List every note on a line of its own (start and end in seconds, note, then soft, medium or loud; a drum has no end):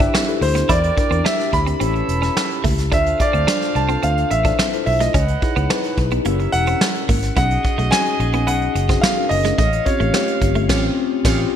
0.00 0.27 D4 medium
0.00 0.28 E4 medium
0.00 0.38 E4 medium
0.00 0.28 G4 medium
0.00 0.38 G4 medium
0.00 0.38 B4 medium
0.00 0.72 B4 medium
0.00 0.26 C5 medium
0.00 0.43 E5 loud
0.00 kick loud
0.00 closed hi-hat medium
0.14 0.23 C4 loud
0.14 snare loud
0.27 0.69 D4 medium
0.27 0.69 E4 medium
0.27 0.70 G4 medium
0.27 0.70 A4 loud
0.27 closed hi-hat soft
0.41 0.61 D2 loud
0.41 0.71 C5 loud
0.41 muted clean electric guitar stroke soft
0.41 open hi-hat medium
0.55 0.65 B3 medium
0.55 snare soft
0.55 closed hi-hat medium
0.69 0.89 E2 loud
0.69 0.79 E4 loud
0.69 1.51 G4 medium
0.69 1.51 A#4 medium
0.69 1.27 D5 loud
0.69 1.51 D5 medium
0.69 kick loud
0.69 closed hi-hat medium
0.84 closed hi-hat medium
0.97 1.23 D4 medium
0.97 1.23 E4 medium
0.97 1.23 G4 medium
0.97 1.24 A#4 medium
0.97 muted clean electric guitar stroke soft
0.97 kick loud
0.97 closed hi-hat medium
1.11 1.21 E2 loud
1.11 1.20 C4 medium
1.11 closed hi-hat soft
1.25 1.81 D4 medium
1.25 1.34 D4 medium
1.25 1.80 E4 medium
1.25 1.80 G4 medium
1.25 1.51 E5 loud
1.25 snare loud
1.39 snare soft
1.39 closed hi-hat soft
1.53 1.73 D2 medium
1.53 2.60 B5 loud
1.53 muted clean electric guitar stroke soft
1.53 kick medium
1.53 closed hi-hat medium
1.66 1.76 C4 medium
1.66 closed hi-hat medium
1.80 2.01 A1 loud
1.80 1.90 C4 medium
1.80 2.85 C#4 medium
1.80 2.85 E4 medium
1.80 2.85 G4 medium
1.80 2.63 A4 medium
1.80 2.85 B4 medium
1.80 2.63 C#5 medium
1.80 2.63 E5 medium
1.80 closed hi-hat loud
1.94 muted clean electric guitar stroke soft
1.94 closed hi-hat soft
2.08 2.28 E1 medium
2.08 closed hi-hat medium
2.22 2.32 C#4 medium
2.22 snare soft
2.22 closed hi-hat medium
2.37 snare loud
2.51 closed hi-hat soft
2.64 2.92 C#2 medium
2.64 2.73 A3 medium
2.64 kick loud
2.64 open hi-hat medium
2.78 snare soft
2.78 closed hi-hat medium
2.91 3.12 D2 loud
2.91 3.44 D4 medium
2.91 3.01 D4 medium
2.91 3.44 F4 medium
2.91 3.44 A4 medium
2.91 4.83 A4 medium
2.91 3.44 C5 medium
2.91 4.83 C5 medium
2.91 3.21 E5 loud
2.91 4.83 F5 loud
2.91 kick loud
2.91 closed hi-hat medium
3.06 closed hi-hat soft
3.20 3.78 D5 loud
3.20 muted clean electric guitar stroke soft
3.20 kick medium
3.20 closed hi-hat medium
3.33 3.44 D2 loud
3.33 3.43 C4 medium
3.33 closed hi-hat soft
3.47 3.86 D4 medium
3.47 3.57 D4 medium
3.47 3.87 F4 medium
3.47 3.87 A4 medium
3.47 3.87 C5 medium
3.47 snare loud
3.61 snare soft
3.61 closed hi-hat soft
3.75 3.95 C2 medium
3.75 4.04 A5 medium
3.75 muted clean electric guitar stroke soft
3.75 closed hi-hat medium
3.89 3.98 C4 medium
3.89 4.41 D4 medium
3.89 4.41 F4 medium
3.89 4.42 A4 medium
3.89 4.42 B4 medium
3.89 closed hi-hat medium
4.03 4.23 D2 medium
4.03 4.12 C4 medium
4.03 4.32 F5 medium
4.03 closed hi-hat medium
4.18 closed hi-hat medium
4.31 4.51 A1 medium
4.31 4.85 E5 loud
4.31 muted clean electric guitar stroke soft
4.31 closed hi-hat medium
4.44 4.54 D4 medium
4.44 4.71 E4 medium
4.44 4.71 F4 medium
4.44 4.71 A4 medium
4.44 4.71 C5 medium
4.44 kick loud
4.44 closed hi-hat medium
4.59 4.68 C4 medium
4.59 snare loud
4.72 5.14 E4 medium
4.72 5.15 F4 medium
4.72 5.15 A4 medium
4.72 5.15 C5 medium
4.72 closed hi-hat soft
4.86 5.07 B1 loud
4.86 4.99 E5 loud
4.86 muted clean electric guitar stroke soft
4.86 open hi-hat medium
5.00 5.10 A3 medium
5.00 5.52 D#5 medium
5.00 snare soft
5.00 closed hi-hat medium
5.14 5.34 C#2 loud
5.14 5.24 C#4 loud
5.14 5.96 B4 medium
5.14 5.96 C#5 medium
5.14 5.96 F#5 medium
5.14 kick loud
5.14 closed hi-hat medium
5.28 closed hi-hat medium
5.42 5.68 D#4 medium
5.42 5.69 E4 medium
5.42 5.69 G#4 medium
5.42 5.69 B4 medium
5.42 muted clean electric guitar stroke soft
5.42 kick medium
5.42 closed hi-hat medium
5.56 5.66 C#2 loud
5.56 5.66 B3 medium
5.56 closed hi-hat soft
5.70 5.80 C4 medium
5.70 6.25 D#4 loud
5.70 6.24 E4 medium
5.70 6.26 G#4 medium
5.70 6.26 B4 loud
5.70 snare loud
5.84 snare soft
5.84 closed hi-hat soft
5.97 6.18 B1 medium
5.97 muted clean electric guitar stroke soft
5.97 kick medium
5.97 closed hi-hat medium
6.11 6.21 B3 medium
6.11 closed hi-hat medium
6.25 6.45 F#1 loud
6.25 6.35 A#3 loud
6.25 7.29 C#4 loud
6.25 7.29 E4 medium
6.25 7.30 G4 medium
6.25 7.30 A#4 loud
6.25 7.07 A#4 medium
6.25 7.08 C#5 medium
6.25 7.07 E5 medium
6.25 closed hi-hat medium
6.39 muted clean electric guitar stroke soft
6.39 closed hi-hat soft
6.52 6.73 E1 loud
6.52 7.35 F#5 loud
6.52 closed hi-hat medium
6.67 6.77 C4 medium
6.67 closed hi-hat medium
6.81 snare loud
6.95 closed hi-hat soft
7.09 7.29 G#1 loud
7.09 7.19 A#3 medium
7.09 kick loud
7.09 open hi-hat medium
7.22 snare soft
7.22 closed hi-hat medium
7.36 7.56 B1 loud
7.36 7.46 B3 loud
7.36 7.88 C#4 medium
7.36 7.88 D#4 medium
7.36 7.89 F#4 medium
7.36 9.27 F#4 medium
7.36 7.89 G#4 medium
7.36 9.27 G#4 medium
7.36 9.27 D#5 loud
7.36 7.94 F#5 loud
7.36 kick loud
7.36 closed hi-hat medium
7.51 closed hi-hat medium
7.64 muted clean electric guitar stroke soft
7.64 kick medium
7.64 closed hi-hat medium
7.78 7.88 B1 loud
7.78 7.88 A3 medium
7.78 closed hi-hat soft
7.91 8.01 C4 medium
7.91 8.31 C#4 medium
7.91 8.31 D#4 medium
7.91 8.31 F#4 medium
7.91 8.31 G#4 medium
7.91 8.49 G#5 loud
7.91 snare loud
8.06 closed hi-hat soft
8.20 8.47 A#1 loud
8.20 muted clean electric guitar stroke soft
8.20 closed hi-hat medium
8.33 8.43 B3 medium
8.33 8.85 C#4 medium
8.33 8.86 D#4 medium
8.33 8.86 F#4 medium
8.33 8.86 G#4 medium
8.33 closed hi-hat medium
8.47 8.67 B1 loud
8.47 8.57 B3 medium
8.47 9.04 F#5 medium
8.47 closed hi-hat medium
8.62 closed hi-hat soft
8.75 8.95 F#1 medium
8.75 muted clean electric guitar stroke soft
8.75 closed hi-hat medium
8.89 8.99 C4 medium
8.89 9.15 C#4 medium
8.89 9.15 D#4 medium
8.89 9.15 F#4 medium
8.89 9.16 G#4 medium
8.89 kick loud
8.89 snare soft
8.89 closed hi-hat medium
9.01 9.13 B3 medium
9.01 9.28 F5 medium
9.01 snare loud
9.17 9.58 C#4 medium
9.17 9.23 D4 medium
9.17 9.59 F#4 medium
9.17 9.59 A#4 medium
9.17 closed hi-hat soft
9.23 9.62 D#4 medium
9.29 9.51 F#1 medium
9.29 9.57 D#5 loud
9.29 muted clean electric guitar stroke soft
9.29 open hi-hat loud
9.44 9.54 G#3 medium
9.44 snare soft
9.44 closed hi-hat soft
9.58 9.78 A1 loud
9.58 9.68 A3 loud
9.58 10.67 F4 medium
9.58 10.67 C#5 medium
9.58 9.87 D#5 loud
9.58 10.67 F5 medium
9.58 kick loud
9.58 closed hi-hat medium
9.73 closed hi-hat medium
9.85 10.12 C4 medium
9.85 10.12 C#4 medium
9.85 10.12 F4 medium
9.85 10.13 G4 medium
9.85 10.65 C#5 medium
9.85 muted clean electric guitar stroke soft
9.85 kick medium
9.85 closed hi-hat medium
10.00 10.10 A1 loud
10.00 10.10 A3 medium
10.00 closed hi-hat soft
10.13 10.69 A3 medium
10.13 10.23 C4 medium
10.13 10.67 C#4 medium
10.13 10.68 F4 medium
10.13 10.68 G4 medium
10.13 snare loud
10.28 closed hi-hat soft
10.42 10.69 G1 medium
10.42 muted clean electric guitar stroke soft
10.42 kick medium
10.42 closed hi-hat medium
10.55 10.65 A3 medium
10.55 closed hi-hat medium
10.68 10.88 A1 loud
10.68 10.88 C4 loud
10.68 10.88 C#4 loud
10.68 10.88 F4 loud
10.68 10.84 F4 medium
10.68 10.88 G4 loud
10.68 10.84 C#5 loud
10.68 10.84 F5 loud
10.68 kick loud
10.68 snare loud
10.68 crash medium
11.24 11.44 A1 loud
11.24 11.43 C4 loud
11.24 11.43 C#4 loud
11.24 11.44 F4 medium
11.24 11.39 F4 medium
11.24 11.44 G4 loud
11.24 11.39 C#5 loud
11.24 11.39 F5 medium
11.24 kick loud
11.24 snare medium
11.24 crash medium